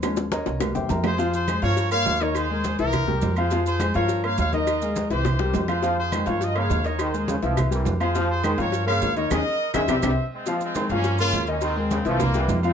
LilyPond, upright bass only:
\new Staff \with { instrumentName = "Upright bass" } { \clef bass \time 4/4 \key f \minor \tempo 4 = 207 ees,4. c,4 e,8 f,4~ | f,4. g,4. ees,4~ | ees,4. c,4. f,4~ | f,4. g,4. ees,4~ |
ees,4. c,4. f,4~ | f,4. g,4. ees,4~ | ees,4. c,4. f,4~ | f,4. g,4. ees,4 |
ees,8 r4 ees,8 c,8 c,8 r4 | r4. g,4. ees,4~ | ees,4. c,4. f,4 | }